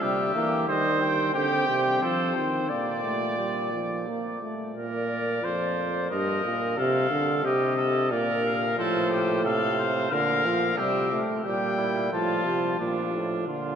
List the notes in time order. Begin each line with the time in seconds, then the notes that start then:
0.00 C3 G3 G4 E5
0.35 E3 A#3
0.68 D#3 G3 C5 D#5
1.01 G5
1.34 D3 C4 G4 G5
1.68 C3
2.02 F3 A4 C5
2.35 D#3 C5
2.69 A#2 A#3 D5
3.04 A3
3.38 G3
3.73 F3
4.07 A#3
4.42 A3
4.75 A#2 A#4 D5
5.43 F2 C5
6.10 G2 A#4 D#5
6.44 A#2
6.77 C3 A4 F5
7.11 D3
7.44 C3 G4 D#5
7.77 A4
8.11 A#2 A#4 D5
8.45 F5
8.78 A2 F3 A4 C5
9.10 G4
9.44 C3 A4 F5
9.79 C5
10.11 A#2 D3 A#4 F5
10.45 F3
10.77 C3 G3 G4 E5
11.12 A3
11.44 A#2 G3 G4 G5
11.77 E4
12.12 A2 F3 F4 A5
12.46 C3
12.80 A#2 F3 D4
13.14 A2
13.47 A#2 D3 F4